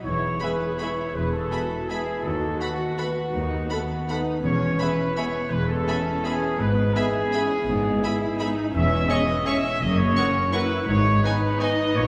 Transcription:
0.04 double bass section E1, cello section E2, harp E3, viola section E4, trumpet section C#5
0.22 harp B3
0.40 french horn section G#3 B3, harp E4, viola section G#4, violin section G#4 E5 B5, trumpet section B4
0.60 harp G#4
0.79 french horn section G#3 B3, viola section E4, violin section G#4 E5 B5, trumpet section C#5
0.97 harp G#4
1.14 double bass section E1, cello section E2, harp E3, viola section G#4, trumpet section B4
1.32 harp B3, trumpet section A4
1.51 french horn section G#3 B3, harp E4, viola section F#4, violin section G#4 E5 B5
1.71 harp G#4
1.88 french horn section G#3 B3, viola section E4, trumpet section G#4, violin section G#4 E5 B5, harp B4
2.23 cello section D#2, double bass section D#2, harp D#3, viola section F#4, trumpet section A4
2.42 harp B3
2.60 french horn section A3 B3, trumpet section F#4, harp F#4, violin section A4 F#5 B5
2.79 harp A4
2.98 french horn section A3 B3, violin section A4 F#5 B5, harp B4
3.17 harp A4
3.34 cello section D#2, double bass section D#2, harp D#3, viola section D#4
3.52 harp B3
3.70 french horn section A3 B3, viola section B3, harp F#4, violin section A4 F#5 B5
3.89 harp A4
4.09 french horn section A3 B3, viola section D#4, violin section A4 F#5 B5, harp B4
4.27 harp A4
4.43 double bass section E1, cello section E2, harp E3, viola section C#4, trumpet section C#5
4.61 harp B3
4.78 french horn section G#3 B3, harp E4, violin section G#4 E5 B5, trumpet section B4
4.98 harp G#4
5.15 french horn section G#3 B3, viola section B3, violin section G#4 E5 B5, harp B4, trumpet section C#5
5.34 harp G#4
5.50 double bass section E1, cello section E2, harp E3, viola section G#3, trumpet section B4
5.68 harp B3, trumpet section A4
5.87 french horn section G#3 B3, viola section C#4, harp E4, violin section G#4 E5 B5
6.05 harp G#4
6.24 french horn section G#3 B3, trumpet section G#4, violin section G#4 E5 B5, harp B4
6.42 harp G#4
6.59 double bass section G#1, cello section G#2, harp G#2, viola section B3, trumpet section B4
6.77 harp G#3
6.95 french horn section G#3 B3, harp B3, trumpet section G#4, violin section G#4 E5 B5
7.14 harp E4
7.32 french horn section G#3 B3, viola section C#4, violin section G#4 E5 B5
7.50 harp E4
7.66 double bass section G#1, cello section G#2, harp G#2, viola section B3
7.84 harp G#3
8.02 french horn section G#3 B3, harp B3, viola section E4, violin section G#4 E5 B5
8.21 harp E4
8.39 french horn section G#3 B3, viola section D#4, harp G#4, violin section G#4 E5 B5
8.57 harp E4
8.73 double bass section E1, cello section E2, harp E2, viola section C#4, trumpet section E5
8.92 harp G#3
9.09 french horn section G#3 C#4, viola section B3, harp C#4, violin section G#4 C#5 C#6, trumpet section D#5
9.29 harp G#4
9.45 french horn section G#3 C#4, viola section C#4, harp C#4, violin section G#4 C#5 C#6, trumpet section E5
9.65 harp G#4
9.80 double bass section F#1, cello section F#2, harp F#2, viola section A#3, trumpet section D#5
9.98 harp A#3, trumpet section C#5
10.16 french horn section A#3 C#4, viola section C#4, harp C#4, violin section F#4 A#4 C#6
10.35 harp F#4
10.52 french horn section A#3 C#4, viola section E4, violin section F#4 A#4 C#6, harp A#4, trumpet section B4
10.71 harp F#4
10.86 double bass section G#1, cello section G#2, harp G#2, viola section D#4, trumpet section C#5
11.06 harp D#4
11.23 french horn section B3 D#4, viola section D#4, violin section D#4 B4 G#5, harp G#4, trumpet section B4
11.42 harp B4
11.60 french horn section B3 D#4, violin section D#4 B4 G#5, trumpet section D#5, harp D#5
11.78 harp B4
11.94 double bass section A#1, cello section A#2, harp A#2, trumpet section C#5

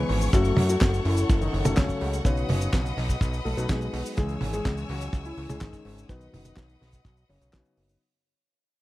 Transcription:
Already playing: grand piano E3 G#3 B3 C#4 G#4 B4, string section G#4 C#5 G#5 C#6
0.09 analog synth bass G#1, open hi-hat
0.21 open hi-hat, cabasa
0.33 analog synth bass F#1, grand piano F#3 A3 C#4 F#4 A4, string section A4 F#5, kick, closed hi-hat, cabasa
0.44 closed hi-hat, cabasa
0.57 analog synth bass F#2, open hi-hat, high tom
0.69 grand piano F#3 F#4, closed hi-hat, cabasa
0.81 analog synth bass F#1, kick, snare, clap, closed hi-hat, cabasa
0.93 closed hi-hat, cabasa
1.05 analog synth bass F#1, grand piano E3 E4, open hi-hat
1.17 closed hi-hat, cabasa
1.29 analog synth bass F#1, kick, closed hi-hat, cabasa
1.41 grand piano D#3 D#4, closed hi-hat, cabasa
1.53 analog synth bass F#1, open hi-hat
1.65 analog synth bass F#1, grand piano F#3 A3 C#4 A4, closed hi-hat, high tom, cabasa
1.77 analog synth bass C#2, grand piano C#3 C#4, kick, snare, clap, closed hi-hat, cabasa
1.89 kick, closed hi-hat, cabasa
2.01 analog synth bass C#2, open hi-hat
2.13 closed hi-hat, cabasa
2.25 analog synth bass B1, grand piano C#3 F#3 B3 C#4 D#4 B4, string section B4 D#5 D#6, kick, closed hi-hat, cabasa
2.37 closed hi-hat, cabasa
2.49 analog synth bass F#1, grand piano C#3 C#4, open hi-hat, high tom
2.61 closed hi-hat, cabasa
2.73 analog synth bass B1, kick, snare, clap, closed hi-hat, cabasa
2.86 closed hi-hat, cabasa
2.97 analog synth bass B1, snare, open hi-hat
3.09 kick, closed hi-hat, cabasa
3.21 analog synth bass B1, kick, closed hi-hat, cabasa
3.33 closed hi-hat, cabasa
3.45 analog synth bass B1, grand piano A3 A4, open hi-hat
3.57 analog synth bass B1, grand piano F#3 B3 D#4 B4, closed hi-hat, cabasa
3.69 analog synth bass B1, grand piano G#3 G#4, kick, snare, clap, closed hi-hat, cabasa
3.81 closed hi-hat, cabasa
3.93 analog synth bass B1, open hi-hat
4.06 open hi-hat, cabasa
4.17 analog synth bass C#2, grand piano E3 G#3 C#4 G#4, string section C#5 G#5 E6, kick, closed hi-hat, cabasa
4.29 closed hi-hat, cabasa
4.41 analog synth bass G#1, open hi-hat, high tom
4.53 grand piano G#3 G#4, closed hi-hat, cabasa
4.65 analog synth bass C#2, kick, snare, clap, closed hi-hat, cabasa
4.77 closed hi-hat, cabasa
4.89 analog synth bass C#2, grand piano F#3 F#4, open hi-hat
5.01 closed hi-hat, cabasa
5.13 analog synth bass C#2, kick, closed hi-hat, cabasa
5.25 grand piano E3 E4, closed hi-hat, cabasa
5.37 analog synth bass C#2, open hi-hat
5.49 analog synth bass C#2, grand piano C#3 G#3 C#4 G#4, closed hi-hat, high tom, cabasa
5.61 analog synth bass G#1, grand piano D#3 D#4, kick, snare, clap, closed hi-hat, cabasa
5.73 kick, closed hi-hat, cabasa
5.85 analog synth bass G#1, open hi-hat
5.98 closed hi-hat, cabasa
6.09 analog synth bass B1, grand piano D#3 F#3 B3 D#4 B4, string section B4 D#5 F#5 D#6, kick, closed hi-hat, cabasa
6.21 closed hi-hat, cabasa
6.33 analog synth bass F#1, grand piano D#3 D#4, open hi-hat, high tom
6.45 closed hi-hat, high tom, cabasa
6.56 analog synth bass B1, kick, snare, clap, closed hi-hat, cabasa
6.69 closed hi-hat, cabasa
6.81 analog synth bass B1, snare, open hi-hat
6.93 kick, closed hi-hat, cabasa
7.05 analog synth bass B1, kick, closed hi-hat, cabasa
7.16 closed hi-hat, cabasa
7.29 analog synth bass F#1, grand piano C#3 C#4, open hi-hat
7.41 analog synth bass B1, closed hi-hat, cabasa
7.53 analog synth bass B1, grand piano C#3 F#3 B3 C#4 D#4 B4, kick, snare, clap, closed hi-hat, cabasa
7.65 closed hi-hat, cabasa
7.77 analog synth bass F#1, open hi-hat
7.89 open hi-hat, cabasa

